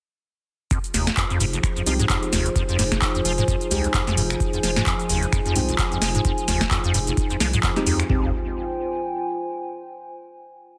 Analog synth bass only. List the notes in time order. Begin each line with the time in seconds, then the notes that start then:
0.94 F1
1.40 F1
1.86 C2
2.33 F1
2.79 F1
3.25 F1
3.71 C2
4.17 F1
4.63 F1
5.09 F1
5.56 C2
6.02 F1
6.48 F1
6.94 F1
7.40 C2
7.86 F2
8.10 F1